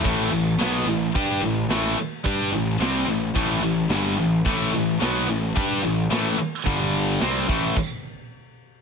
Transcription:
<<
  \new Staff \with { instrumentName = "Distorted electric guitar" } { \clef bass \time 4/4 \key a \minor \tempo 4 = 109 <a, e a>8 <a, e>8 <b, fis b>8 <a, e>8 <g d' g'>8 <a, e>8 <a, e a>8 r8 | <g d' g'>8 <a, e>8 <c g c'>8 <a, e>8 <a, e a>8 <a, e>8 <g, d g>8 <a, e>8 | <a, e a>8 <a, e>8 <b, fis b>8 <a, e>8 <g d' g'>8 <a, e>8 <a, e a>8 r8 | <g, d g>4 <c g c'>8 <a, e a>8 r2 | }
  \new Staff \with { instrumentName = "Distorted electric guitar" } { \clef bass \time 4/4 \key a \minor <a, e a>8 <a, e>8 <b, fis b>8 <a, e>8 <g d' g'>8 <a, e>8 <a, e a>8 r8 | <g d' g'>8 <a, e>8 <c g c'>8 <a, e>8 <a, e a>8 <a, e>8 <g, d g>8 <a, e>8 | <a, e a>8 <a, e>8 <b, fis b>8 <a, e>8 <g d' g'>8 <a, e>8 <a, e a>8 r8 | <g, d g>4 <c g c'>8 <a, e a>8 r2 | }
  \new Staff \with { instrumentName = "Distorted electric guitar" } { \clef bass \time 4/4 \key a \minor <a, e a>8 <a, e>8 <b, fis b>8 <a, e>8 <g d' g'>8 <a, e>8 <a, e a>8 r8 | <g d' g'>8 <a, e>8 <c g c'>8 <a, e>8 <a, e a>8 <a, e>8 <g, d g>8 <a, e>8 | <a, e a>8 <a, e>8 <b, fis b>8 <a, e>8 <g d' g'>8 <a, e>8 <a, e a>8 r8 | <g, d g>4 <c g c'>8 <a, e a>8 r2 | }
  \new Staff \with { instrumentName = "Picked electric bass" } { \clef bass \time 4/4 \key a \minor a,,8 a,,8 b,,8 a,,8 g,8 a,,8 a,,8 r8 | g,8 a,,8 c,8 a,,8 a,,8 a,,8 g,,8 a,,8 | a,,8 a,,8 b,,8 a,,8 g,8 a,,8 a,,8 r8 | g,,4 c,8 a,,8 r2 | }
  \new DrumStaff \with { instrumentName = "Drums" } \drummode { \time 4/4 <cymc bd>4 <cymc sn>4 <cymc bd>4 <cymc sn>4 | <cymc bd>4 <cymc sn>4 <cymc bd>4 <cymc sn>4 | <cymc bd>4 <cymc sn>4 <cymc bd>4 <cymc sn>4 | <cymc bd>4 <cymc sn>8 bd8 <cymc bd>4 r4 | }
>>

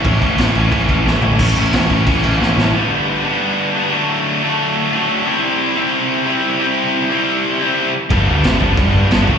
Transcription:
<<
  \new Staff \with { instrumentName = "Distorted electric guitar" } { \time 4/4 \key g \lydian \tempo 4 = 179 <a, e a cis' e'>8 <a, e a cis' e'>8 <a, e a cis' e'>8 <a, e a cis' e'>8 <a, e a cis' e'>8 <a, e a cis' e'>8 <a, e a cis' e'>8 <a, e a cis' e'>8 | <a, e a cis' e'>8 <a, e a cis' e'>8 <a, e a cis' e'>8 <a, e a cis' e'>8 <a, e a cis' e'>8 <a, e a cis' e'>8 <a, e a cis' e'>8 <a, e a cis' e'>8 | <g, d g b d'>4. <g, d g b d'>4. <g, d g b d'>8 <d fis a d'>8~ | <d fis a d'>4 <d fis a d'>4. <d fis a d'>4 <c g c' e'>8~ |
<c g c' e'>4 <c g c' e'>4. <c g c' e'>4 <c g c' e'>8~ | <c g c' e'>4 <c g c' e'>4. <c g c' e'>4 r8 | <g, d g b d'>4. <g, d g b d'>4. <g, d g b d'>8 <d fis a d'>8 | }
  \new Staff \with { instrumentName = "Picked electric bass" } { \clef bass \time 4/4 \key g \lydian a,,8 a,,8 a,,8 a,,8 a,,8 a,,8 a,,8 a,,8 | a,,8 a,,8 a,,8 a,,8 a,,8 a,,8 a,,8 a,,8 | r1 | r1 |
r1 | r1 | g,,8 d,8 g,,8 g,,8 g,,8 g,8 g,,8 d,8 | }
  \new DrumStaff \with { instrumentName = "Drums" } \drummode { \time 4/4 <cymc bd>8 <cymc bd>8 <cymc sn>8 cymc8 <cymc bd>8 <cymc bd>8 sn8 tomfh8 | <cymc bd>8 cymc8 <cymc sn>8 <cymc bd>8 <cymc bd>8 cymc8 sn8 sn8 | r4 r4 r4 r4 | r4 r4 r4 r4 |
r4 r4 r4 r4 | r4 r4 r4 r4 | <cymc bd>4 <cymc sn>8 bd8 <cymc bd>4 <cymc sn>8 bd8 | }
>>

